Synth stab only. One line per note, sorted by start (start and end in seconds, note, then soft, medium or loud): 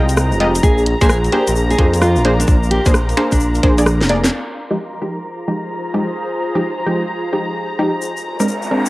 0.00 0.38 G#3 medium
0.00 0.38 F4 medium
0.00 0.38 D#5 medium
0.00 0.38 G5 medium
0.40 0.52 G#3 medium
0.40 0.52 F4 medium
0.40 0.52 G4 medium
0.40 0.52 D#5 loud
1.01 1.08 A#3 medium
1.01 1.08 D4 medium
1.01 1.08 G#4 medium
1.01 1.08 C5 loud
1.33 1.50 A#3 medium
1.33 1.50 D4 medium
1.33 1.50 G#4 medium
1.33 1.50 C5 medium
1.79 2.23 A#3 medium
1.79 2.23 D4 medium
1.79 2.23 G#4 medium
1.79 2.23 C5 medium
2.25 2.37 A#3 medium
2.25 2.37 D4 medium
2.25 2.37 G#4 medium
2.25 2.37 C5 loud
2.86 2.92 A#3 medium
2.86 2.92 D4 medium
2.86 2.92 G#4 medium
2.86 2.92 C5 loud
3.17 3.34 A#3 medium
3.17 3.34 D4 medium
3.17 3.34 G#4 medium
3.17 3.34 C5 medium
3.63 3.75 A#3 medium
3.63 3.75 D4 medium
3.63 3.75 G#4 medium
3.63 3.75 C5 loud
3.78 3.85 A#3 medium
3.78 3.85 D4 medium
3.78 3.85 G#4 medium
3.78 3.85 D5 medium
4.10 4.27 A#3 medium
4.10 4.27 D4 medium
4.10 4.27 G#4 medium
4.10 4.27 D5 loud
4.71 4.77 F3 medium
4.71 4.77 G#3 medium
4.71 4.77 D#4 medium
4.71 4.77 G4 loud
5.02 5.19 F3 medium
5.02 5.19 G#3 medium
5.02 5.19 D#4 medium
5.02 5.19 G4 medium
5.48 5.92 F3 medium
5.48 5.92 G#3 medium
5.48 5.92 D#4 medium
5.48 5.92 G4 medium
5.94 6.06 F3 medium
5.94 6.06 G#3 medium
5.94 6.06 D#4 medium
5.94 6.06 G4 medium
6.55 6.62 F3 medium
6.55 6.62 G#3 medium
6.55 6.62 D#4 medium
6.55 6.62 G4 loud
6.86 7.03 F3 medium
6.86 7.03 G#3 medium
6.86 7.03 D#4 medium
6.86 7.03 G4 medium
7.33 7.77 F3 medium
7.33 7.77 G#3 medium
7.33 7.77 D#4 medium
7.33 7.77 G4 medium
7.79 7.90 F3 medium
7.79 7.90 G#3 medium
7.79 7.90 D#4 medium
7.79 7.90 G4 loud
8.40 8.46 G#3 medium
8.40 8.46 C4 medium
8.40 8.46 D4 medium
8.40 8.46 A#4 loud
8.71 8.88 G#3 medium
8.71 8.88 C4 medium
8.71 8.88 D4 medium
8.71 8.88 A#4 medium